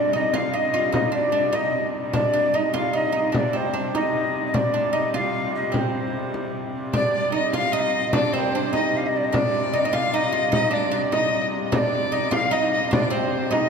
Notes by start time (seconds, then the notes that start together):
Already playing: C3 G3 D4 D5
0.13 D#4 D#5
0.34 F4 F5, frame drum
0.54 D#4 D#5, frame drum
0.74 F4
0.92 D#4 D#5, frame drum
1.12 D4 D5, frame drum
1.32 D4, frame drum
1.53 D#4 D#5, frame drum
1.93 frame drum
2.13 C3 G3 D4 D5, frame drum
2.33 D4, frame drum
2.54 D#4 D#5
2.74 F4 F5, frame drum
2.93 D#4 D#5, frame drum
3.12 D#4
3.32 D4 D5, frame drum
3.53 C4 C5, frame drum
3.74 D4
3.95 D#4 D#5, frame drum
4.15 frame drum
4.46 D#5
4.53 D4 D5, frame drum
4.74 D4, frame drum
4.93 D#4 D#5
5.14 F4 F5, frame drum
5.34 frame drum
5.55 D#5
5.72 C4 C5, frame drum
6.34 frame drum
6.93 C3 G3 D4 D5, frame drum
7.13 D5, frame drum
7.32 D#4 D#5
7.36 D#5
7.52 F4 F5, frame drum
7.72 D#4 D#5 F5, frame drum
7.80 D#5
8.12 D4 D5, frame drum
8.33 C4 C5, frame drum
8.39 A#4
8.48 C5
8.55 D4
8.73 D#4 D#5, frame drum
8.94 F5, frame drum
9.06 D#5
9.16 D5
9.24 D#5
9.32 D4 D5, frame drum
9.54 frame drum
9.73 D#4 D#5
9.79 D5
9.84 D#4 D#5
9.93 F4 F5, frame drum
10.13 D#4 D#5, frame drum
10.32 F4
10.52 D#4 D#5, frame drum
10.71 D4 D5, frame drum
10.91 D4 D5
11.12 D#4 D#5, frame drum
11.66 D#5
11.72 C3 G3 D4 D5 D#5, frame drum
11.78 D5
11.93 frame drum
12.12 D#4 D#5
12.31 F4 F5, frame drum
12.51 D#4 D#5, frame drum
12.73 D#5
12.91 D4 D5, frame drum
13.10 C4 C5, frame drum
13.51 D#4 D#5, frame drum